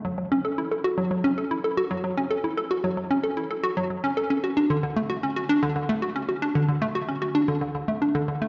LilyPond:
\new Staff \with { instrumentName = "Synth arpeggio sound" } { \time 4/4 \key fis \minor \tempo 4 = 113 fis16 fis16 cis'16 a'16 e'16 a'16 fis'16 fis16 fis16 cis'16 a'16 e'16 a'16 fis'16 fis16 fis16 | cis'16 a'16 e'16 a'16 fis'16 fis16 fis16 cis'16 a'16 e'16 a'16 fis'16 fis16 fis16 cis'16 a'16 | cis'16 fis'16 d'16 d16 d16 a16 fis'16 cis'16 fis'16 d'16 d16 d16 a16 fis'16 cis'16 fis'16 | d'16 d16 d16 a16 fis'16 cis'16 fis'16 d'16 d16 d16 d16 a16 d'16 d16 d16 a16 | }